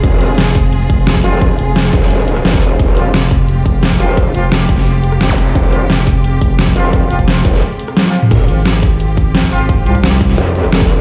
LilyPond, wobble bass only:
\new Staff \with { instrumentName = "Wobble bass" } { \clef bass \time 4/4 \key f \minor \tempo 4 = 174 f,,4 r2 r8 f,,8~ | f,,8 r4 f,,4. f,,4 | f,,4 r2 r8 f,,8~ | f,,8 r2. r8 |
f,,4 r2 r8 f,,8~ | f,,8 r4 f,,8 r2 | f,,8 r2. r8 | r2 f,4 f,,4 | }